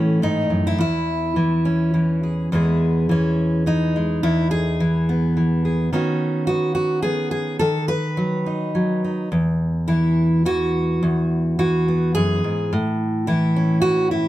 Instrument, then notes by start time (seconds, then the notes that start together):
steel-string acoustic guitar
Already playing: A2 E3 A3 C#4
0.22 G#2 D#4
0.50 F#2
0.67 E4
0.78 E2 E4
1.36 E3
1.65 C#4
1.94 E3
2.23 G#4
2.52 E2 E3 G#3 B3 G#4
3.09 E3 C#4
3.66 E3 D#4
3.96 G#3
4.23 E2 E4
4.51 G#4
4.80 E3
5.09 B3
5.37 E3
5.65 G#4
5.93 D#3 B3 C#4 F#4
6.47 B3 F#4
6.75 F#4
7.02 B3 G#4
7.31 G#4
7.59 D#3 A4
7.88 B4
8.17 F#3
8.46 D#4
8.75 F#3
9.04 D#4
9.32 E2
9.88 E3 E4
10.45 E3 F#4
11.03 E2
11.59 E3 F#4
11.88 B3
12.15 F#2 G#4
12.44 G#2
12.73 A2
13.27 E3 E4
13.56 C#4
13.82 E3 F#4
14.11 E4